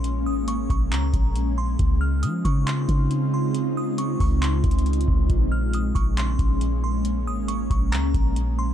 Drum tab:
HH |x-----x--x--x--x--x-----|x-----x--x--x--x--x-----|x-----x--o--x--xxxxxx---|x-----x--x--x--x--x-----|
CP |------------x-----------|------------x-----------|------------x-----------|------------x-----------|
BD |---------o-----o--------|o--------o-----o--------|---------o-----o-----o--|o--------o-----o--------|

HH |x-----x--x--x--x--x-----|
CP |------------x-----------|
BD |---------o-----o--------|